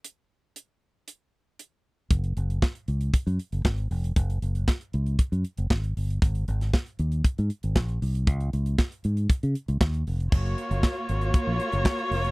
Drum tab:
CC |----------------|----------------|----------------|----------------|
HH |x---x---x---x---|xxxx-xxxxxxx-xox|xxxx-xxxxxxx-xox|xxxx-xxxxxxx-xox|
SD |----------------|----o-------o---|----o-------o---|---oo-------o---|
BD |----------------|o---o---o---o---|o---o---o---o---|o---o---o---o---|

CC |----------------|x---------------|
HH |xxxx-xxxxxxx-xox|-xxx--xxx-xx-xox|
SD |----o-------o---|----o-------o---|
BD |o---o---o---o---|o---o---o---o---|